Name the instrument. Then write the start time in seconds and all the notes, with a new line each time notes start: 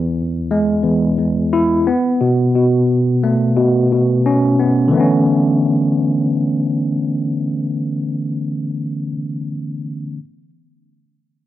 tine electric piano
Already playing: E2
0.51 G#3
0.84 E2
1.18 E2
1.53 E4
1.87 B3
2.21 B2
2.55 B2
3.23 A3
3.57 B2
3.92 B2
4.26 C#4
4.59 B3
4.88 D3 E3
4.94 A3 B3
5.00 C#4